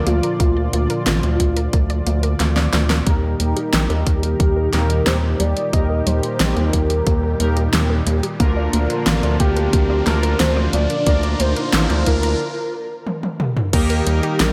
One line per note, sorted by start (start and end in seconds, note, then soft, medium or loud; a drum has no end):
0.00 3.03 A#2 medium
0.00 3.03 D3 medium
0.00 3.03 F3 medium
0.00 3.03 F4 medium
0.00 3.03 D5 medium
0.07 0.21 D2 loud
0.07 0.20 A#3 medium
0.07 2.73 F4 loud
0.07 closed hi-hat medium
0.23 0.39 A#4 medium
0.23 closed hi-hat soft
0.40 0.68 D2 loud
0.40 0.48 A#3 medium
0.40 kick loud
0.40 closed hi-hat medium
0.57 0.70 D5 medium
0.73 0.87 D2 medium
0.73 0.87 A#3 medium
0.73 closed hi-hat medium
0.90 1.06 A#4 medium
0.90 closed hi-hat medium
1.07 1.21 A1 medium
1.07 1.15 A#3 medium
1.07 snare loud
1.07 closed hi-hat medium
1.23 1.37 D2 loud
1.23 1.37 D5 medium
1.23 closed hi-hat soft
1.40 1.68 D2 medium
1.40 1.54 A#3 medium
1.40 kick medium
1.40 closed hi-hat medium
1.57 1.72 A#4 medium
1.57 closed hi-hat soft
1.73 2.02 D2 loud
1.73 1.81 A#3 medium
1.73 kick loud
1.73 closed hi-hat medium
1.90 2.04 D5 medium
1.90 closed hi-hat soft
2.07 2.35 D2 medium
2.07 2.20 A#3 medium
2.07 closed hi-hat medium
2.23 2.39 A#4 medium
2.23 closed hi-hat soft
2.40 2.68 D2 medium
2.40 2.48 A#3 medium
2.40 snare medium
2.40 closed hi-hat medium
2.56 2.70 D5 medium
2.56 snare medium
2.56 closed hi-hat soft
2.73 3.02 D2 medium
2.73 2.87 A#3 medium
2.73 snare medium
2.73 closed hi-hat medium
2.90 3.06 A#4 medium
2.90 snare medium
2.90 closed hi-hat medium
3.06 3.35 D#2 loud
3.06 12.36 A#2 medium
3.06 4.69 D#3 medium
3.06 8.36 D#3 medium
3.06 3.15 G3 medium
3.06 8.36 G3 medium
3.06 4.69 A#3 medium
3.06 4.69 D#4 medium
3.06 8.36 D#4 medium
3.06 4.69 G4 medium
3.06 8.36 G4 medium
3.06 4.69 A#4 loud
3.06 kick loud
3.06 closed hi-hat medium
3.06 riser medium
3.23 3.37 A#4 medium
3.40 3.54 D#2 medium
3.40 3.54 G3 medium
3.40 closed hi-hat medium
3.57 3.72 G4 medium
3.57 closed hi-hat medium
3.73 3.87 A#1 medium
3.73 3.81 G3 medium
3.73 snare loud
3.73 closed hi-hat medium
3.90 4.04 D#2 medium
3.90 4.04 A#4 medium
3.90 closed hi-hat soft
4.07 4.35 D#2 medium
4.07 4.20 G3 medium
4.07 4.69 G4 medium
4.07 kick loud
4.07 closed hi-hat medium
4.23 4.39 G4 medium
4.23 closed hi-hat medium
4.40 4.68 D#2 medium
4.40 4.48 G3 medium
4.40 kick loud
4.40 closed hi-hat medium
4.57 4.70 A#4 medium
4.73 5.02 D#2 loud
4.73 5.01 D#3 loud
4.73 4.87 G3 medium
4.73 5.01 A#3 medium
4.73 5.01 D#4 medium
4.73 5.01 G4 medium
4.73 5.08 A#4 loud
4.73 5.01 A#4 loud
4.73 snare medium
4.73 closed hi-hat medium
4.90 5.06 G4 medium
4.90 closed hi-hat medium
5.06 5.35 D#2 loud
5.06 5.15 G3 medium
5.06 5.41 C5 loud
5.06 snare loud
5.06 closed hi-hat medium
5.23 5.37 A#4 medium
5.40 5.54 D#2 loud
5.40 5.54 G3 medium
5.40 5.72 D5 loud
5.40 closed hi-hat medium
5.57 5.72 G4 medium
5.57 closed hi-hat medium
5.73 6.02 D#2 loud
5.73 7.36 D#3 medium
5.73 5.81 G3 medium
5.73 7.36 A#3 medium
5.73 7.36 D#4 medium
5.73 7.36 G4 medium
5.73 7.36 A#4 medium
5.73 6.08 D#5 loud
5.73 kick loud
5.73 closed hi-hat medium
5.90 6.04 A#4 medium
6.06 6.21 D#2 medium
6.06 6.20 G3 medium
6.06 6.75 C5 loud
6.06 closed hi-hat medium
6.23 6.39 G4 medium
6.23 closed hi-hat medium
6.40 6.54 A#1 medium
6.40 6.48 G3 medium
6.40 snare loud
6.40 closed hi-hat medium
6.57 6.71 D#2 medium
6.57 6.70 A#4 medium
6.57 closed hi-hat soft
6.73 7.02 D#2 medium
6.73 6.87 G3 medium
6.73 8.07 A#4 loud
6.73 kick medium
6.73 closed hi-hat medium
6.90 7.06 G4 medium
6.90 closed hi-hat medium
7.07 7.35 D#2 loud
7.07 7.15 G3 medium
7.07 kick loud
7.07 closed hi-hat medium
7.23 7.37 A#4 medium
7.40 7.68 D#2 loud
7.40 7.57 D#3 loud
7.40 7.54 G3 medium
7.40 7.57 A#3 medium
7.40 7.57 D#4 medium
7.40 7.57 G4 medium
7.40 7.57 A#4 loud
7.40 closed hi-hat medium
7.57 7.72 G4 medium
7.57 closed hi-hat medium
7.73 8.02 D#2 loud
7.73 7.81 G3 medium
7.73 snare loud
7.73 closed hi-hat medium
7.90 8.04 A#4 medium
8.06 8.21 D#2 loud
8.06 8.20 G3 medium
8.06 closed hi-hat medium
8.23 8.39 G4 medium
8.23 closed hi-hat medium
8.40 8.68 D2 loud
8.40 10.03 D3 loud
8.40 12.36 D3 medium
8.40 12.36 F3 medium
8.40 8.48 A#3 medium
8.40 10.03 A#3 medium
8.40 10.03 D4 medium
8.40 12.36 D4 medium
8.40 10.03 F4 medium
8.40 12.36 F4 medium
8.40 10.03 A#4 loud
8.40 kick loud
8.40 closed hi-hat medium
8.57 8.70 D5 medium
8.73 8.88 D2 medium
8.73 8.87 A#3 medium
8.73 closed hi-hat medium
8.90 9.06 A#4 medium
8.90 closed hi-hat medium
9.07 9.21 A1 loud
9.07 9.15 A#3 medium
9.07 snare loud
9.07 closed hi-hat medium
9.23 9.37 D2 medium
9.23 9.37 D5 medium
9.23 closed hi-hat soft
9.40 9.68 D2 medium
9.40 9.54 A#3 medium
9.40 10.03 G4 medium
9.40 kick loud
9.40 closed hi-hat medium
9.57 9.72 A#4 medium
9.57 closed hi-hat medium
9.73 10.02 D2 medium
9.73 9.81 A#3 medium
9.73 kick loud
9.73 closed hi-hat medium
9.90 10.04 D5 medium
10.07 10.35 D2 loud
10.07 10.35 D3 loud
10.07 10.20 A#3 medium
10.07 10.35 A#3 medium
10.07 10.35 D4 medium
10.07 10.35 F4 medium
10.07 10.38 A#4 loud
10.07 10.35 A#4 loud
10.07 snare medium
10.07 closed hi-hat medium
10.23 10.39 A#4 medium
10.23 closed hi-hat medium
10.40 10.68 D2 loud
10.40 10.48 A#3 medium
10.40 10.75 C5 loud
10.40 snare loud
10.40 closed hi-hat medium
10.57 10.70 D5 medium
10.73 10.87 D2 loud
10.73 10.87 A#3 medium
10.73 11.06 D5 loud
10.73 closed hi-hat medium
10.90 11.06 A#4 medium
10.90 closed hi-hat medium
11.06 11.35 D2 loud
11.06 12.40 D3 medium
11.06 12.40 A#3 medium
11.06 11.15 A#3 medium
11.06 12.40 D4 medium
11.06 12.40 F4 medium
11.06 12.40 A#4 medium
11.06 11.41 D5 loud
11.06 kick loud
11.06 closed hi-hat medium
11.23 11.37 D5 medium
11.23 closed hi-hat soft
11.40 11.54 D2 medium
11.40 11.54 A#3 medium
11.40 12.08 C5 loud
11.40 closed hi-hat medium
11.56 11.72 A#4 medium
11.56 closed hi-hat medium
11.73 11.87 A1 loud
11.73 11.81 A#3 medium
11.73 snare loud
11.73 closed hi-hat medium
11.90 12.04 D2 medium
11.90 12.04 D5 medium
11.90 closed hi-hat soft
12.06 12.35 D2 medium
12.06 12.20 A#3 medium
12.06 13.40 A#4 loud
12.06 kick medium
12.06 closed hi-hat medium
12.23 12.39 A#4 medium
12.23 closed hi-hat soft
13.07 high tom medium
13.23 high tom medium
13.40 mid tom medium
13.57 mid tom medium
13.73 14.02 D#2 loud
13.73 14.53 A#2 medium
13.73 14.53 D#3 loud
13.73 14.53 D#3 medium
13.73 13.81 G3 medium
13.73 14.53 G3 medium
13.73 14.53 A#3 medium
13.73 14.53 D#4 medium
13.73 14.53 G4 medium
13.73 14.42 G4 loud
13.73 14.53 G4 medium
13.73 14.53 A#4 loud
13.73 kick loud
13.73 closed hi-hat medium
13.73 crash loud
13.90 14.04 A#4 medium
13.90 closed hi-hat soft
14.07 14.21 D#2 medium
14.07 14.20 G3 medium
14.07 closed hi-hat medium
14.23 14.39 G4 medium
14.23 closed hi-hat soft
14.40 14.53 A#1 loud
14.40 14.48 G3 medium
14.40 14.53 A#4 loud
14.40 snare loud
14.40 closed hi-hat loud